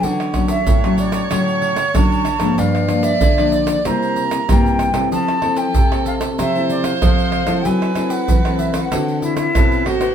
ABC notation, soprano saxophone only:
X:1
M:4/4
L:1/8
Q:1/4=95
K:Dmix
V:1 name="Soprano saxophone"
^c8 | d4 _B3 z | A4 c4 | B4 A z B c |]